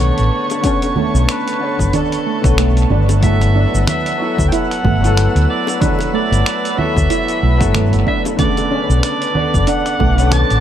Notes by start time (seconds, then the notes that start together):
Already playing: C#3 D3 B3 A4 B4 C#5 D5 A5 C#6
0.00 C#5, cabasa
0.18 A1, closed hi-hat, cabasa
0.50 closed hi-hat, high bongo, cabasa
0.61 D3 B3 C#4 C#5, kick, closed hi-hat, cabasa
0.67 A4
0.82 closed hi-hat, high bongo, cabasa
0.96 A3, low conga
1.14 B1, cabasa
1.29 B4, finger snap, closed hi-hat, cabasa
1.48 closed hi-hat, cabasa
1.59 D3 B3 C#5
1.64 A4
1.79 F#1, kick, cabasa
1.93 D4 A4, closed hi-hat, low conga, cabasa
2.12 closed hi-hat, cabasa
2.26 A3
2.42 B1 D3 B3 A4 C#5, finger snap, kick, closed hi-hat, cabasa
2.58 A3, finger snap, closed hi-hat, cabasa
2.77 closed hi-hat, cabasa
2.90 G1 D4 F#5 E6, low conga
3.09 closed hi-hat, high bongo, cabasa
3.20 F#3 A3 B3 E4 E5, kick, closed hi-hat, cabasa
3.26 A4
3.41 closed hi-hat, high bongo, cabasa
3.56 D4
3.74 G1, cabasa
3.87 E5, finger snap, closed hi-hat, low conga, cabasa
4.06 closed hi-hat, cabasa
4.17 F#3 B3
4.22 E4 A4
4.39 D2, kick, cabasa
4.48 G5
4.52 E4 F#5, closed hi-hat, cabasa
4.71 finger snap, closed hi-hat, cabasa
4.85 G1 A3, kick, low conga
5.01 F#3 B3 E4, closed hi-hat, cabasa
5.06 A4
5.17 finger snap, closed hi-hat, cabasa
5.35 D2, closed hi-hat, cabasa
5.48 D5 B5
5.67 closed hi-hat, high bongo, cabasa
5.80 F#3 B3 D4 E4 B4, kick, closed hi-hat, low conga, cabasa
5.86 A4
5.99 closed hi-hat, high bongo, cabasa
6.14 A3 D5
6.32 G1, closed hi-hat, cabasa
6.46 finger snap, closed hi-hat, cabasa
6.65 closed hi-hat, cabasa
6.75 F#3 B3 E4 E5, low conga
6.80 A4
6.97 D2, kick, cabasa
7.10 E4, closed hi-hat, cabasa
7.28 closed hi-hat, cabasa
7.42 B1 A3
7.58 G2 F#3 B3 E4, finger snap, kick, closed hi-hat, cabasa
7.63 A4
7.75 A3, finger snap, closed hi-hat, low conga, cabasa
7.93 G1, closed hi-hat, cabasa
8.07 D4 E5, kick
8.25 closed hi-hat, high bongo, cabasa
8.36 D3 A3 B3 D5 A5 D6, kick, closed hi-hat, low conga, cabasa
8.41 C#3 A4
8.57 closed hi-hat, high bongo, cabasa
8.71 C#4
8.89 B1, cabasa
9.03 D5, finger snap, closed hi-hat, cabasa
9.22 closed hi-hat, cabasa
9.33 D3 B3, low conga
9.37 A4 D5
9.54 F#1, kick, cabasa
9.67 D4 F#5, closed hi-hat, cabasa
9.86 finger snap, closed hi-hat, cabasa
10.00 B1 A3, kick
10.16 D3 B3 C#4, closed hi-hat, cabasa
10.22 A4
10.32 A5, finger snap, closed hi-hat, low conga, cabasa
10.50 A1, closed hi-hat, cabasa